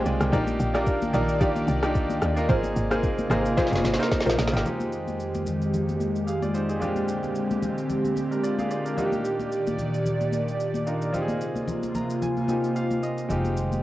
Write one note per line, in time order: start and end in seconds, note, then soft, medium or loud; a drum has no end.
0.00 0.31 D3 medium
0.00 0.29 G#3 medium
0.00 0.35 G#3 medium
0.00 0.31 C4 medium
0.00 0.35 C4 medium
0.00 0.21 D4 medium
0.00 0.06 F4 medium
0.00 0.33 G4 loud
0.00 0.35 G#4 medium
0.00 0.21 A#4 loud
0.00 0.35 C5 medium
0.00 0.06 D5 medium
0.00 0.35 F5 medium
0.00 2.45 G5 medium
0.06 0.20 C2 medium
0.06 0.20 F4 medium
0.06 0.20 D5 medium
0.06 0.31 G#5 medium
0.06 shaker medium
0.21 0.32 C2 medium
0.21 0.31 D4 medium
0.21 0.46 A#4 medium
0.21 cross-stick loud
0.21 shaker medium
0.32 0.59 A#1 loud
0.32 2.47 D#3 medium
0.32 0.66 A#3 medium
0.32 0.66 D4 medium
0.32 0.44 D#4 loud
0.32 0.66 D#4 medium
0.32 0.66 F4 medium
0.32 0.44 G4 medium
0.32 0.66 G4 loud
0.32 0.44 D5 loud
0.32 2.47 D5 medium
0.32 kick loud
0.32 low conga medium
0.32 shaker medium
0.47 high conga medium
0.47 shaker medium
0.60 1.11 A#1 loud
0.60 shaker medium
0.74 1.06 A#3 medium
0.74 1.06 D4 medium
0.74 1.11 D#4 medium
0.74 1.07 D#4 medium
0.74 1.07 F4 medium
0.74 1.11 G4 medium
0.74 1.07 A#4 loud
0.74 1.11 D5 medium
0.74 cross-stick medium
0.74 high conga medium
0.74 shaker soft
0.87 kick medium
0.87 shaker medium
1.02 high conga medium
1.02 shaker medium
1.13 1.65 A#1 loud
1.13 1.36 A#3 medium
1.13 1.36 D4 medium
1.13 1.39 D#4 medium
1.13 1.36 D#4 medium
1.13 1.36 F4 medium
1.13 1.39 G4 medium
1.13 1.36 A#4 loud
1.13 1.39 D5 medium
1.13 low conga medium
1.13 shaker loud
1.29 shaker medium
1.40 1.74 A#3 medium
1.40 1.74 D4 medium
1.40 1.52 D#4 medium
1.40 1.74 D#4 medium
1.40 1.74 F4 medium
1.40 1.52 G4 medium
1.40 1.74 G4 loud
1.40 1.52 D5 loud
1.40 kick loud
1.40 low conga medium
1.40 shaker medium
1.56 high conga medium
1.56 shaker medium
1.67 2.20 C2 loud
1.67 high conga medium
1.67 shaker medium
1.82 2.25 A#3 medium
1.82 2.25 D4 medium
1.82 1.92 D#4 medium
1.82 2.25 D#4 medium
1.82 2.25 F4 medium
1.82 1.92 G4 medium
1.82 2.25 G4 loud
1.82 1.92 D5 medium
1.82 cross-stick loud
1.82 shaker medium
1.95 kick loud
1.95 shaker medium
2.10 high conga medium
2.10 shaker medium
2.22 2.48 D#2 medium
2.22 cross-stick medium
2.22 shaker loud
2.36 2.46 A#3 medium
2.36 2.47 D4 medium
2.36 2.47 D#4 medium
2.36 2.47 F4 medium
2.36 2.47 A#4 loud
2.36 shaker medium
2.49 2.75 G#1 loud
2.49 4.63 C3 medium
2.49 2.82 A#3 medium
2.49 4.63 A#3 medium
2.49 2.82 C4 medium
2.49 2.82 D#4 medium
2.49 2.60 F4 loud
2.49 4.63 F4 medium
2.49 2.82 F4 medium
2.49 2.83 G#4 loud
2.49 2.60 A#4 medium
2.49 2.60 C5 loud
2.49 kick loud
2.49 low conga medium
2.49 shaker medium
2.64 high conga medium
2.64 shaker medium
2.76 3.28 G#1 loud
2.76 shaker medium
2.91 3.23 A#3 medium
2.91 3.23 C4 medium
2.91 3.23 D#4 medium
2.91 3.27 F4 medium
2.91 3.23 F4 medium
2.91 3.23 G#4 medium
2.91 3.27 A#4 medium
2.91 3.28 C5 medium
2.91 cross-stick loud
2.91 high conga medium
2.91 shaker soft
3.03 kick medium
3.03 shaker medium
3.18 high conga medium
3.18 shaker medium
3.30 3.56 G#1 loud
3.30 3.52 A#3 medium
3.30 3.52 C4 medium
3.30 3.52 D#4 medium
3.30 3.55 F4 medium
3.30 3.53 F4 medium
3.30 3.53 G#4 loud
3.30 3.55 A#4 medium
3.30 3.55 C5 medium
3.30 cross-stick loud
3.30 low conga medium
3.30 shaker loud
3.46 shaker medium
3.57 3.90 A#3 medium
3.57 3.90 C4 medium
3.57 3.90 D#4 medium
3.57 3.68 F4 medium
3.57 3.90 F4 medium
3.57 3.90 G#4 medium
3.57 3.68 A#4 medium
3.57 3.68 C5 loud
3.57 kick loud
3.57 snare medium
3.57 low conga medium
3.57 shaker medium
3.67 snare medium
3.72 3.84 F1 loud
3.72 snare medium
3.72 high conga medium
3.72 shaker medium
3.84 3.99 G#1 medium
3.84 snare medium
3.84 high conga medium
3.84 shaker loud
3.94 snare medium
3.98 4.41 A#3 medium
3.98 4.41 C4 medium
3.98 4.41 D#4 medium
3.98 4.08 F4 medium
3.98 4.41 F4 medium
3.98 4.08 A#4 medium
3.98 4.42 A#4 medium
3.98 4.08 C5 medium
3.98 shaker medium
4.03 snare medium
4.11 kick loud
4.11 snare medium
4.11 shaker medium
4.20 snare medium
4.26 4.38 A#1 medium
4.26 4.35 F4 medium
4.26 4.35 A#4 medium
4.26 4.35 C5 medium
4.26 snare loud
4.26 high conga medium
4.26 shaker medium
4.38 4.53 A#1 medium
4.38 snare medium
4.38 shaker medium
4.47 snare loud
4.52 4.65 G#1 loud
4.52 4.62 A#3 medium
4.52 4.63 C4 medium
4.52 4.63 D#4 medium
4.52 4.63 F4 medium
4.52 4.63 G4 medium
4.52 shaker medium
4.57 snare medium
4.64 6.80 F2 medium
4.64 6.80 D#3 medium
4.64 6.77 G#3 medium
4.64 8.94 G#3 medium
4.64 6.24 C4 medium
4.64 6.24 D#4 medium
4.64 6.25 F4 medium
4.64 11.10 G4 medium
4.64 6.25 G4 medium
4.64 low conga medium
4.64 shaker medium
4.80 high conga medium
4.80 shaker soft
4.92 shaker medium
5.07 high conga medium
5.07 shaker soft
5.20 shaker medium
5.34 high conga medium
5.34 shaker medium
5.46 high conga soft
5.46 low conga medium
5.46 shaker medium
5.62 shaker medium
5.73 low conga medium
5.73 shaker medium
5.89 high conga medium
5.89 shaker soft
6.00 high conga medium
6.00 shaker medium
6.16 shaker soft
6.27 6.42 G#4 medium
6.27 6.41 F5 medium
6.27 shaker medium
6.42 6.54 F4 medium
6.42 6.54 D5 medium
6.42 high conga medium
6.42 shaker medium
6.54 6.69 D#4 medium
6.54 6.68 C5 medium
6.54 shaker medium
6.69 6.79 C4 soft
6.69 6.95 G#4 medium
6.69 shaker medium
6.80 8.93 A#2 medium
6.80 8.96 D3 medium
6.80 8.93 G#3 medium
6.80 8.93 C4 medium
6.80 8.96 C4 medium
6.80 8.14 D4 medium
6.80 8.14 F4 medium
6.80 8.14 G4 medium
6.80 low conga medium
6.80 shaker medium
6.96 high conga medium
6.96 shaker soft
7.08 shaker medium
7.23 high conga medium
7.23 shaker soft
7.35 shaker medium
7.51 high conga medium
7.51 shaker medium
7.62 high conga soft
7.62 low conga medium
7.62 shaker medium
7.78 shaker medium
7.89 low conga medium
7.89 shaker medium
8.05 high conga medium
8.05 shaker soft
8.16 high conga medium
8.16 shaker medium
8.31 8.43 D4 soft
8.31 8.43 A#4 medium
8.31 shaker soft
8.43 8.58 F4 medium
8.43 8.58 D5 medium
8.43 shaker medium
8.58 8.70 G#4 medium
8.58 8.70 F5 medium
8.58 high conga medium
8.58 shaker medium
8.71 8.85 F4 medium
8.71 8.85 D5 medium
8.71 shaker medium
8.86 8.96 D4 soft
8.86 9.11 A#4 medium
8.86 shaker medium
8.96 11.12 A#2 medium
8.96 11.12 D#3 medium
8.96 10.82 A#3 medium
8.96 10.83 D4 medium
8.96 10.83 D#4 medium
8.96 10.84 F4 medium
8.96 9.06 F#4 medium
8.96 11.12 D5 medium
8.96 low conga medium
8.96 shaker medium
9.06 10.87 G4 medium
9.12 high conga medium
9.12 shaker medium
9.25 shaker medium
9.39 high conga medium
9.39 shaker soft
9.52 shaker medium
9.67 high conga medium
9.67 shaker medium
9.78 high conga soft
9.78 low conga medium
9.78 shaker medium
9.94 shaker medium
10.06 low conga medium
10.06 shaker medium
10.21 high conga medium
10.21 shaker soft
10.32 high conga medium
10.32 shaker medium
10.48 shaker soft
10.60 shaker medium
10.74 high conga medium
10.74 shaker medium
10.86 11.11 A#3 medium
10.86 11.14 D4 medium
10.86 11.12 D#4 medium
10.86 11.13 F4 soft
10.86 11.14 A#4 medium
10.86 shaker medium
11.02 shaker medium
11.12 13.28 C3 medium
11.12 12.46 A#3 medium
11.12 13.28 A#3 medium
11.12 12.46 C4 medium
11.12 12.46 D#4 medium
11.12 13.28 F4 medium
11.12 12.47 F4 medium
11.12 11.22 G4 medium
11.12 low conga medium
11.12 shaker medium
11.22 12.50 G#4 medium
11.28 high conga medium
11.28 shaker soft
11.41 shaker medium
11.56 high conga medium
11.56 shaker soft
11.68 low conga medium
11.68 shaker medium
11.83 high conga medium
11.83 shaker soft
11.95 12.20 A#5 medium
11.95 high conga soft
11.95 low conga medium
11.95 shaker medium
12.10 shaker medium
12.22 12.47 G#5 medium
12.22 low conga medium
12.22 shaker medium
12.37 high conga medium
12.37 shaker soft
12.48 13.30 A#3 medium
12.48 13.28 C4 medium
12.48 13.28 D#4 medium
12.48 13.29 F4 medium
12.48 13.30 G4 medium
12.48 12.74 G#5 medium
12.48 high conga medium
12.48 shaker medium
12.64 shaker soft
12.76 13.01 F5 medium
12.76 shaker medium
12.91 high conga medium
12.91 shaker medium
13.03 13.28 D#5 medium
13.03 shaker medium
13.18 shaker medium
13.29 13.83 F1 medium
13.29 13.83 D#3 medium
13.29 13.83 G#3 medium
13.29 13.83 C4 medium
13.29 13.83 D#4 medium
13.29 13.83 F4 medium
13.29 13.83 G4 medium
13.29 low conga medium
13.29 shaker medium
13.45 high conga medium
13.45 shaker soft
13.57 shaker medium
13.72 high conga medium
13.72 shaker soft